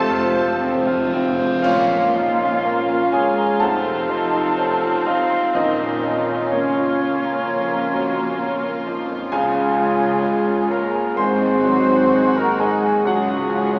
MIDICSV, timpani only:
0, 0, Header, 1, 2, 480
1, 0, Start_track
1, 0, Key_signature, -5, "minor"
1, 0, Tempo, 1020408
1, 768, Time_signature, 4, 2, 24, 8
1, 1245, Tempo, 967742
1, 3165, Tempo, 933126
1, 6525, Tempo, 892857
1, 6923, End_track
2, 0, Start_track
2, 0, Title_t, "Timpani"
2, 0, Program_c, 0, 47
2, 15, Note_on_c, 0, 41, 83
2, 42, Note_off_c, 0, 41, 0
2, 48, Note_on_c, 0, 41, 89
2, 79, Note_off_c, 0, 41, 0
2, 85, Note_on_c, 0, 41, 94
2, 115, Note_off_c, 0, 41, 0
2, 120, Note_on_c, 0, 41, 95
2, 150, Note_off_c, 0, 41, 0
2, 156, Note_on_c, 0, 41, 102
2, 186, Note_off_c, 0, 41, 0
2, 192, Note_on_c, 0, 41, 97
2, 224, Note_off_c, 0, 41, 0
2, 229, Note_on_c, 0, 41, 98
2, 260, Note_off_c, 0, 41, 0
2, 266, Note_on_c, 0, 41, 100
2, 298, Note_off_c, 0, 41, 0
2, 303, Note_on_c, 0, 41, 101
2, 337, Note_off_c, 0, 41, 0
2, 342, Note_on_c, 0, 41, 97
2, 370, Note_off_c, 0, 41, 0
2, 376, Note_on_c, 0, 41, 107
2, 412, Note_off_c, 0, 41, 0
2, 417, Note_on_c, 0, 41, 105
2, 448, Note_off_c, 0, 41, 0
2, 454, Note_on_c, 0, 41, 104
2, 488, Note_off_c, 0, 41, 0
2, 494, Note_on_c, 0, 41, 108
2, 527, Note_off_c, 0, 41, 0
2, 532, Note_on_c, 0, 41, 122
2, 561, Note_off_c, 0, 41, 0
2, 566, Note_on_c, 0, 41, 112
2, 598, Note_off_c, 0, 41, 0
2, 604, Note_on_c, 0, 41, 110
2, 636, Note_off_c, 0, 41, 0
2, 641, Note_on_c, 0, 41, 111
2, 671, Note_off_c, 0, 41, 0
2, 676, Note_on_c, 0, 41, 112
2, 710, Note_off_c, 0, 41, 0
2, 716, Note_on_c, 0, 41, 114
2, 750, Note_off_c, 0, 41, 0
2, 773, Note_on_c, 0, 46, 92
2, 1467, Note_off_c, 0, 46, 0
2, 2689, Note_on_c, 0, 46, 92
2, 3392, Note_off_c, 0, 46, 0
2, 6923, End_track
0, 0, End_of_file